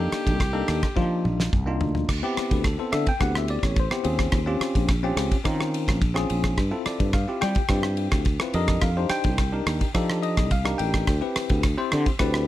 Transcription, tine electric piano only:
0.00 0.40 A#3 medium
0.00 0.40 D4 medium
0.00 0.40 D#4 medium
0.00 0.41 A4 medium
0.53 0.86 A#3 medium
0.53 0.86 D4 medium
0.53 0.86 D#4 medium
0.53 0.86 A4 medium
0.96 1.50 A#3 medium
0.96 1.50 D4 medium
0.96 1.50 D#4 medium
0.96 1.51 F4 medium
1.66 2.08 A#3 medium
1.66 2.08 D4 medium
1.66 2.09 D#4 medium
1.66 2.09 F4 medium
2.23 2.66 B3 medium
2.23 2.66 C4 medium
2.23 2.66 E4 medium
2.23 2.66 G4 loud
2.53 2.66 B4 medium
2.65 2.78 A4 medium
2.78 3.11 B3 medium
2.78 3.12 C4 medium
2.78 3.11 E4 medium
2.78 3.12 A4 medium
2.78 2.93 C5 medium
2.92 3.07 E5 medium
3.09 3.21 G5 medium
3.20 3.75 B3 medium
3.20 3.75 C4 medium
3.20 3.75 E4 medium
3.20 3.75 G4 medium
3.20 3.35 F#5 medium
3.38 3.50 E5 medium
3.50 3.64 D5 medium
3.64 3.77 C#5 medium
3.80 4.59 C5 medium
3.91 4.05 B3 medium
3.91 4.03 C4 medium
3.91 4.05 E4 medium
3.91 4.05 G4 medium
4.04 4.39 C4 medium
4.04 4.38 C#4 medium
4.04 4.38 F4 medium
4.04 4.39 G#4 medium
4.46 4.90 C4 medium
4.46 4.90 C#4 medium
4.46 4.90 F4 medium
4.46 4.91 G4 medium
5.03 5.36 C4 medium
5.03 5.36 C#4 medium
5.03 5.36 F4 medium
5.03 5.36 G4 medium
5.44 5.99 C4 medium
5.44 5.99 C#4 medium
5.44 6.00 F4 medium
5.44 6.00 A#4 medium
6.14 6.57 C4 medium
6.14 6.57 C#4 medium
6.14 6.57 F4 medium
6.14 6.57 G#4 medium
6.71 7.15 C4 medium
6.71 7.15 E4 medium
6.71 7.15 F4 medium
6.71 7.15 A4 medium
6.86 7.13 D5 medium
7.14 7.41 F5 medium
7.28 7.61 C4 medium
7.28 7.61 E4 medium
7.28 7.61 F4 medium
7.28 7.61 G4 medium
7.41 8.22 G5 medium
7.69 8.24 C4 medium
7.69 8.24 E4 medium
7.69 8.24 F4 medium
7.69 8.25 G4 medium
8.41 8.54 C4 medium
8.41 8.55 E4 medium
8.41 8.55 F4 medium
8.41 8.55 B4 medium
8.54 8.88 D4 medium
8.54 8.88 D#4 medium
8.54 8.89 G4 medium
8.54 8.89 A#4 medium
8.54 8.82 D#5 medium
8.82 9.09 F5 medium
8.97 9.40 D4 medium
8.97 9.40 D#4 medium
8.97 9.40 G4 medium
8.97 9.40 C5 medium
9.10 9.90 G5 loud
9.53 9.85 D4 medium
9.53 9.86 D#4 medium
9.53 9.86 G4 medium
9.53 9.86 A#4 medium
9.94 10.49 D4 medium
9.94 10.49 D#4 medium
9.94 10.49 G4 medium
9.94 10.49 A4 medium
10.22 10.50 D#5 medium
10.52 10.79 F5 medium
10.65 11.07 D4 medium
10.65 11.07 D#4 medium
10.65 11.07 G4 medium
10.65 11.07 A#4 medium
10.78 11.59 G5 medium
11.21 11.64 C4 medium
11.21 11.65 E4 medium
11.21 11.65 G4 medium
11.21 11.65 B4 medium
11.78 12.10 C4 medium
11.78 12.10 E4 medium
11.78 12.10 G4 medium
11.78 12.10 C5 medium
12.19 12.47 C4 medium
12.19 12.47 E4 medium
12.19 12.47 G4 medium
12.19 12.47 B4 medium

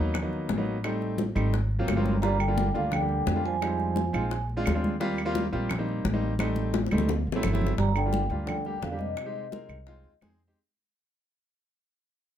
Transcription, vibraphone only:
2.22 2.39 A#5 loud
2.40 2.73 G5 medium
2.76 2.84 F5 medium
2.93 3.41 G5 loud
3.46 4.45 G#5 medium
7.80 7.95 A#5 loud
7.97 8.29 G5 medium
8.47 8.80 G5 medium
8.82 9.00 F5 medium
8.99 10.17 D#5 medium

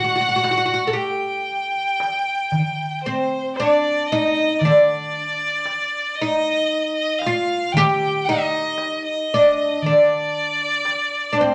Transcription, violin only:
0.00 0.98 F#5 medium
0.97 3.03 G5 medium
3.03 3.53 C5 medium
3.56 4.08 D5 medium
4.06 4.60 D#5 medium
4.59 6.17 D5 medium
6.15 6.93 D#5 medium
6.94 7.20 D#5 medium
7.19 7.74 F5 medium
7.72 8.27 G5 medium
8.25 9.04 D#5 medium
9.04 9.84 D#5 medium
9.82 11.38 D5 medium
11.37 11.55 C5 medium

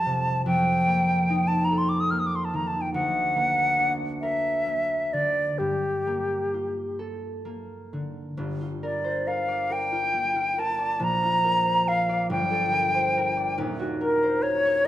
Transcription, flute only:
0.00 0.45 A5 medium
0.47 1.49 G5 medium
1.48 1.66 A5 medium
1.65 1.79 A#5 medium
1.78 1.91 C6 medium
1.89 2.02 D6 medium
2.00 2.12 D#6 medium
2.11 2.21 F6 medium
2.19 2.28 D#6 medium
2.27 2.37 D6 medium
2.35 2.46 C6 medium
2.45 2.57 A5 medium
2.56 2.69 A#5 medium
2.67 2.83 A5 medium
2.81 2.93 G5 medium
2.94 3.93 F#5 medium
4.21 5.15 E5 medium
5.13 5.60 D5 medium
5.58 6.99 G4 medium
8.83 9.29 D5 medium
9.27 9.74 F5 medium
9.72 10.61 G5 medium
10.59 11.05 A5 medium
11.04 11.89 A#5 loud
11.88 12.31 F5 medium
12.31 13.56 G5 medium
14.01 14.44 A#4 medium
14.42 14.87 C#5 medium

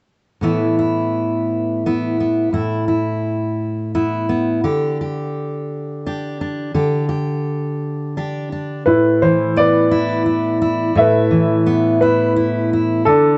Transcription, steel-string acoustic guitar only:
0.41 2.51 A2 soft
0.41 2.49 E3 soft
0.41 1.84 B3 soft
0.41 0.78 E4 soft
0.79 1.84 E4 soft
1.86 2.19 B3 soft
1.86 2.53 E4 soft
2.20 2.50 B3 soft
2.53 4.64 A2 soft
2.53 2.87 E4 soft
2.88 3.94 E4 soft
3.95 4.28 B3 soft
3.95 4.64 E4 soft
4.29 4.60 B3 soft
4.64 6.73 D3 soft
4.64 5.01 G4 soft
5.01 6.06 G4 soft
6.06 6.40 D4 soft
6.06 6.72 G4 soft
6.41 6.71 D4 soft
6.74 8.86 D3 medium
6.74 7.08 G4 soft
7.09 8.15 G4 soft
8.17 8.51 D4 soft
8.17 8.83 G4 soft
8.52 8.82 D4 soft
8.86 10.94 A2 medium
9.22 10.93 E3 soft
9.56 10.92 B3 soft
9.91 10.25 E4 soft
10.26 10.60 E4 soft
10.62 12.01 E4 soft
10.95 13.06 A2 medium
11.31 13.02 E3 soft
11.66 13.03 B3 soft
12.02 12.35 E4 soft
12.36 12.72 E4 soft
12.73 13.08 E4 soft
13.06 13.38 D3 medium

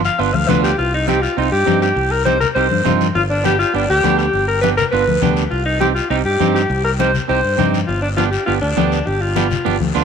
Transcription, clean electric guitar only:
0.19 0.30 B3 medium
0.19 0.30 D4 medium
0.19 0.30 F4 medium
0.49 0.70 B3 medium
0.49 0.70 D4 medium
0.49 0.70 F4 medium
1.08 1.18 C4 medium
1.08 1.19 D#4 medium
1.08 1.19 G4 medium
1.37 1.48 C4 medium
1.37 1.48 D#4 soft
1.37 1.48 F4 medium
1.66 1.88 C4 medium
1.66 1.88 D#4 medium
1.66 1.88 G4 medium
2.26 2.37 C4 medium
2.26 2.37 D#4 soft
2.26 2.37 G4 medium
2.55 2.66 C4 medium
2.55 2.67 D#4 medium
2.55 2.67 G4 medium
2.84 3.06 C4 medium
2.84 3.06 D#4 medium
2.84 3.06 F4 medium
3.44 3.55 B3 medium
3.44 3.55 D4 medium
3.44 3.55 G4 medium
3.73 3.85 B3 medium
3.73 3.85 D4 soft
3.73 3.85 G4 medium
4.03 4.25 B3 medium
4.03 4.25 D4 medium
4.03 4.25 G4 medium
4.63 4.74 B3 medium
4.63 4.74 D4 medium
4.63 4.74 G4 medium
4.92 5.03 B3 medium
4.92 5.03 D4 soft
4.92 5.03 F4 medium
5.22 5.43 B3 medium
5.22 5.43 D4 medium
5.22 5.43 G4 medium
5.81 5.92 C4 medium
5.81 5.92 D#4 medium
5.81 5.92 G4 medium
6.10 6.21 C4 medium
6.10 6.21 D#4 medium
6.10 6.21 G4 medium
6.40 6.61 C4 medium
6.40 6.61 D#4 medium
6.40 6.61 G4 medium
6.99 7.10 C4 medium
6.99 7.10 D#4 medium
6.99 7.10 G4 medium
7.28 7.39 C4 medium
7.28 7.39 D#4 soft
7.28 7.40 G4 medium
7.58 7.79 C4 medium
7.58 7.79 D#4 medium
7.58 7.80 G4 medium
8.17 8.28 B3 medium
8.17 8.28 D4 medium
8.17 8.29 G4 medium
8.47 8.58 B3 medium
8.47 8.58 D4 medium
8.47 8.58 G4 medium
8.77 8.98 B3 medium
8.77 8.98 D4 medium
8.77 8.98 G4 medium
9.36 9.47 B3 medium
9.36 9.47 D4 medium
9.36 9.47 G4 medium
9.65 9.76 B3 medium
9.65 9.76 D4 medium
9.65 9.76 G4 medium
9.95 10.04 B3 medium
9.95 10.04 D4 medium
9.95 10.04 F4 medium

